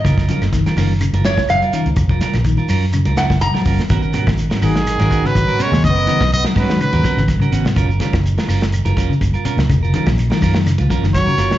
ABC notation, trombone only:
X:1
M:4/4
L:1/16
Q:"Swing 16ths" 1/4=124
K:G#dor
V:1 name="Trombone" clef=bass
z16 | z16 | z6 D,4- D, F,3 G,2 | B,4 B,2 F,2 F,4 z4 |
z16 | z12 F,4 |]